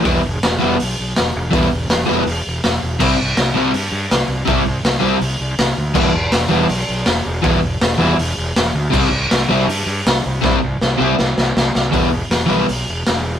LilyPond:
<<
  \new Staff \with { instrumentName = "Overdriven electric guitar" } { \time 4/4 \key e \minor \tempo 4 = 162 <e g b e'>8 r4 <e g b e'>8 r2 | <e g b e'>8 r4 <e g b e'>8 r2 | <c g c' e'>8 r4 <c g c' e'>8 r2 | <c g c' e'>8 r4 <c g c' e'>8 r2 |
<e g b e'>8 r4 <e g b e'>8 r2 | <e g b e'>8 r4 <e g b e'>8 r2 | <c g c' e'>8 r4 <c g c' e'>8 r2 | <c g c' e'>8 r4 <c g c' e'>8 r2 |
<e g b e'>8 r4 <e g b e'>8 r2 | }
  \new Staff \with { instrumentName = "Fingered electric bass" } { \clef bass \time 4/4 \key e \minor e,,8 e,,8 e,,8 e,,8 b,,8 b,,8 e,,8 e,,8 | e,,8 e,,8 e,,8 e,,8 e,,8 e,,8 e,,8 e,,8 | c,8 c,8 c,8 c,8 g,8 g,8 c,8 c,8 | c,8 c,8 c,8 c,8 c,8 c,8 c,8 d,8 |
e,,8 e,,8 e,,8 e,,8 b,,8 b,,8 e,,8 e,,8 | e,,8 e,,8 e,,8 e,,8 e,,8 e,,8 e,,8 d,8 | c,8 c,8 c,8 c,8 g,8 g,8 c,8 c,8 | c,8 c,8 c,8 c,8 c,8 c,8 c,8 c,8 |
e,,4 e,,8 b,,8 b,,8 e,,8 e,,4 | }
  \new DrumStaff \with { instrumentName = "Drums" } \drummode { \time 4/4 <hho bd>4 <hho sn>4 hho4 <hho sn>4 | <hho bd>4 <hho sn>4 hho4 <hho sn>4 | <cymc bd>4 <hho sn>4 hho4 <hho sn>4 | <hho bd>4 <hho sn>4 hho4 <hho sn>4 |
<cymc bd>4 <hho sn>4 hho4 <hho sn>4 | <hho bd>4 <hho sn>4 hho4 <hho sn>4 | <cymc bd>4 <hho sn>4 hho4 <hho sn>4 | <bd sn>4 sn4 sn8 sn8 sn8 sn8 |
<hho bd>4 <hho sn>4 hho4 <hho sn>4 | }
>>